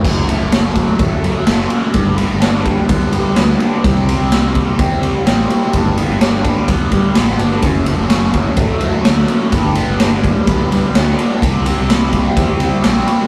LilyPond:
<<
  \new Staff \with { instrumentName = "Distorted electric guitar" } { \time 4/4 \key fis \phrygian \tempo 4 = 126 fis,8 a8 cis'8 fis8 a8 fis8 a8 cis'8 | g,8 b8 d'8 g8 b8 g8 b8 d'8 | c8 c'8 e'8 g8 c'8 g8 c'8 e'8 | g,8 b8 d'8 g8 b8 g8 b8 d'8 |
fis,8 a8 cis'8 fis8 a8 fis8 a8 cis'8 | g,8 b8 d'8 g8 b8 g8 b8 d'8 | c8 c'8 e'8 g8 c'8 g8 c'8 e'8 | }
  \new Staff \with { instrumentName = "Fingered electric bass" } { \clef bass \time 4/4 \key fis \phrygian fis,,8. fis,,4~ fis,,16 a,,16 r16 fis,16 r16 fis,,8 r8 | g,,8. g,,4~ g,,16 b,,16 r16 g,16 r16 d,8 r8 | c,8. c,4~ c,16 e,16 r16 c16 r16 a,,8 r8 | g,,8. g,,4~ g,,16 b,,16 r16 g,16 r16 a,,8 g,,8 |
fis,,8. fis,,4~ fis,,16 a,,16 r16 fis,16 r16 d,8 r8 | g,,8. g,,4~ g,,16 b,,16 r16 g,16 r16 d,8 r8 | c,8. c,4~ c,16 e,16 r16 c16 r16 bes,,8 r8 | }
  \new DrumStaff \with { instrumentName = "Drums" } \drummode { \time 4/4 <cymc bd>8 cymr8 <cymr sn>8 <bd cymr>8 <bd cymr>8 cymr8 <cymr sn>8 cymr8 | <bd cymr>8 cymr8 <cymr sn>8 <bd cymr>8 <bd cymr>8 cymr8 <cymr sn>8 cymr8 | <bd cymr>8 cymr8 <cymr sn>8 <bd cymr>8 <bd cymr>8 cymr8 <cymr sn>8 cymr8 | <bd cymr>8 cymr8 <cymr sn>8 <bd cymr>8 <bd cymr>8 <bd cymr>8 <cymr sn>16 sn16 cymr8 |
<bd cymr>8 cymr8 <cymr sn>8 <bd cymr>8 <bd cymr>8 cymr8 <cymr sn>8 cymr8 | <bd cymr>8 cymr8 <cymr sn>8 <bd cymr>8 <bd cymr>8 cymr8 <cymr sn>8 cymr8 | <bd cymr>8 cymr8 <cymr sn>8 <bd cymr>8 <bd cymr>8 cymr8 <cymr sn>16 sn16 cymr8 | }
>>